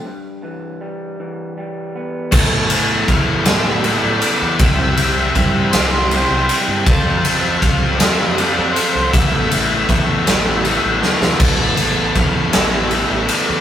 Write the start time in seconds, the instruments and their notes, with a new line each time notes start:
0.05 clean electric guitar G2
0.43 clean electric guitar E3
0.81 clean electric guitar G3
1.20 clean electric guitar E3
1.57 clean electric guitar G3
1.95 clean electric guitar B3
2.32 fingered electric bass A2, distorted electric guitar A3 B3 E4 A4, lead electric guitar A5, kick, crash
2.52 fingered electric bass A2
2.70 distorted electric guitar B3 E4 A4, ride
3.08 fingered electric bass E2, distorted electric guitar A3 B3 E4, lead electric guitar F5, kick, ride
3.12 distorted electric guitar A4
3.44 fingered electric bass A2, distorted electric guitar E4 A4, lead electric guitar E5, snare, ride
3.49 distorted electric guitar A3 B3
3.84 distorted electric guitar A3 B3 E4 A4, ride
4.02 fingered electric bass A2, lead electric guitar D5
4.20 overdriven electric guitar E4 A4, lead electric guitar D5, ride
4.25 overdriven electric guitar B3
4.42 fingered electric bass E2
4.59 fingered electric bass C2, distorted electric guitar C3 G3 C4 E4 G4, lead electric guitar E5, kick, ride
4.79 fingered electric bass C2
4.97 distorted electric guitar C4 E4 G4, ride
5.35 fingered electric bass G2, distorted electric guitar G3 C4 E4 G4, kick, ride
5.71 fingered electric bass C2, distorted electric guitar G3 C4 E4 G4, lead electric guitar C5, snare, ride
5.76 distorted electric guitar C3
6.11 distorted electric guitar G3 C4 E4 G4, ride
6.31 fingered electric bass C2
6.48 overdriven electric guitar C4 E4 G4, ride
6.68 fingered electric bass G2
6.84 fingered electric bass F2, distorted electric guitar F3 C4 F4, lead electric guitar A5, kick, ride
6.89 distorted electric guitar A4
7.06 fingered electric bass F2
7.24 distorted electric guitar C4 F4 A4, ride
7.59 fingered electric bass C2, distorted electric guitar F3, lead electric guitar F5, kick, ride
7.64 distorted electric guitar C4 F4 A4
7.97 lead electric guitar E5, snare, ride
8.01 fingered electric bass F2, distorted electric guitar F3 C4 F4 A4
8.38 distorted electric guitar F3 C4 F4 A4, lead electric guitar D5, ride
8.53 lead electric guitar D5
8.58 fingered electric bass F2
8.71 lead electric guitar C5
8.76 overdriven electric guitar C4 F4 A4, ride
8.95 fingered electric bass C2
9.11 fingered electric bass A1, distorted electric guitar A3, lead electric guitar E5, kick, ride
9.15 distorted electric guitar B3 E4 A4
9.33 fingered electric bass A1
9.51 distorted electric guitar B3 E4 A4, ride
9.89 fingered electric bass E2, distorted electric guitar A3 B3 E4 A4, kick, ride
10.27 fingered electric bass A1, distorted electric guitar A3 B3 E4 A4, snare, ride
10.64 distorted electric guitar A3 B3 E4 A4, ride
10.84 fingered electric bass A1
11.02 overdriven electric guitar B3 E4 A4, snare
11.21 fingered electric bass E2, snare
11.40 fingered electric bass A1, distorted electric guitar A3 B3 E4, lead electric guitar A5, kick, crash
11.44 distorted electric guitar A4
11.60 fingered electric bass A1
11.77 distorted electric guitar B3 E4 A4, ride
12.15 fingered electric bass E2, distorted electric guitar A3 B3 E4 A4, lead electric guitar F5, kick, ride
12.53 fingered electric bass A1, distorted electric guitar A3 B3 E4 A4, lead electric guitar E5, snare, ride
12.91 distorted electric guitar A3 B3 E4 A4, ride
13.11 fingered electric bass A1
13.29 overdriven electric guitar B3 E4 A4, ride
13.33 lead electric guitar D5
13.49 fingered electric bass E2